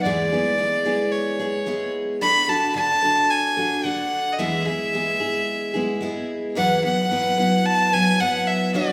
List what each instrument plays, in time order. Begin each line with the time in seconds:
0.03 steel-string acoustic guitar E2 E3 G#3 B3 E4 G#4, fiddle D5
0.32 steel-string acoustic guitar G#3 B3 E4 G#4
0.58 steel-string acoustic guitar G#3 B3 E4 G#4
0.86 steel-string acoustic guitar G#3 B3 E4 G#4
1.12 fiddle C#5
1.39 steel-string acoustic guitar G#3 B3 E4 G#4
1.66 steel-string acoustic guitar G#3 B3 E4 G#4
2.21 steel-string acoustic guitar D3 D4 F#4 A4, fiddle B5
2.48 steel-string acoustic guitar D4 F#4 A4, fiddle A5
2.75 steel-string acoustic guitar D3 D4 F#4 A4, fiddle A5
3.02 steel-string acoustic guitar D4 F#4 A4
3.30 fiddle G#5
3.57 steel-string acoustic guitar D4 F#4 A4
3.84 steel-string acoustic guitar D3 D4 F#4 A4, fiddle F#5
4.32 fiddle D#5
4.39 steel-string acoustic guitar E2 E3 G#3 B3 E4 G#4, fiddle E5
4.66 steel-string acoustic guitar G#3 B3 E4 G#4, fiddle E5
4.93 steel-string acoustic guitar G#3 B3 E4 G#4
5.20 steel-string acoustic guitar G#3 B3 E4 G#4
5.74 steel-string acoustic guitar G#3 B3 E4 G#4
6.01 steel-string acoustic guitar G#3 B3 E4 G#4
6.55 steel-string acoustic guitar E2 E3 F#3 B3 E4 B4, fiddle F#5
6.82 steel-string acoustic guitar F#3 B3 E4 B4, fiddle F#5
7.10 steel-string acoustic guitar F#3 B3 E4 B4
7.38 steel-string acoustic guitar F#3 B3 E4 B4
7.66 fiddle A5
7.92 steel-string acoustic guitar F#3 B3 E4 B4, fiddle G#5
8.20 steel-string acoustic guitar F#3 B3 E4 B4, fiddle F#5
8.48 fiddle E5
8.74 steel-string acoustic guitar B2 F#3 B3 D4 F#4 C#5, fiddle D5